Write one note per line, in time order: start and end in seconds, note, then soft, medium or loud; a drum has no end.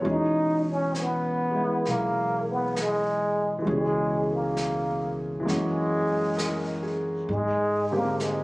0.00 3.63 B2 soft
0.00 3.57 E3 soft
0.00 1.50 G#3 soft
0.00 0.23 C#5 soft
0.05 1.81 E2 medium
0.05 3.65 C#4 soft
0.05 0.71 D#4 loud
0.05 3.67 G#4 soft
0.05 brush sweep soft
0.70 0.99 C#4 medium
0.94 1.90 B3 medium
0.94 snare soft
0.94 hi-hat pedal soft
1.51 3.61 G#3 soft
1.51 3.66 E4 soft
1.85 3.63 B1 medium
1.85 2.53 A#3 medium
1.85 brush sweep soft
1.85 snare soft
2.51 2.83 B3 medium
2.76 snare soft
2.76 hi-hat pedal soft
2.81 3.55 G#3 medium
3.59 5.38 E3 soft
3.59 5.41 G#3 soft
3.65 5.43 C#2 medium
3.65 5.46 B2 soft
3.65 5.47 C#4 soft
3.65 brush sweep soft
3.69 4.34 G#3 medium
3.69 5.49 G#4 soft
4.32 5.21 A#3 medium
4.57 snare soft
4.57 hi-hat pedal soft
5.40 7.25 E3 soft
5.40 7.26 G#3 soft
5.45 7.24 F#2 medium
5.45 7.27 A#3 soft
5.45 7.29 C#4 soft
5.45 brush sweep soft
5.45 snare soft
5.50 6.98 G#3 loud
5.50 7.30 F#4 soft
6.38 7.10 A#4 soft
6.38 snare soft
6.38 hi-hat pedal medium
6.83 7.47 G#4 soft
7.28 8.44 G#2 medium
7.28 7.95 G#3 medium
7.28 brush sweep soft
7.91 8.44 D3 soft
7.91 8.44 G#3 soft
7.91 8.44 A#3 soft
7.91 8.23 A#3 medium
7.91 8.44 C4 soft
7.91 8.44 G4 soft
8.20 8.44 G#3 medium
8.20 snare soft
8.20 hi-hat pedal soft